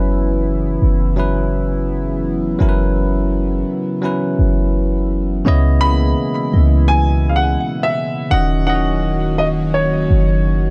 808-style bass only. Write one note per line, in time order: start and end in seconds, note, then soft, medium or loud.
0.00 0.78 F#1 loud
0.82 2.56 F#1 loud
2.61 3.64 F#1 loud
4.39 5.42 F#1 medium
5.46 6.15 C#2 loud
6.54 7.57 C#2 loud
8.32 10.06 D#1 loud
10.11 10.70 F#1 loud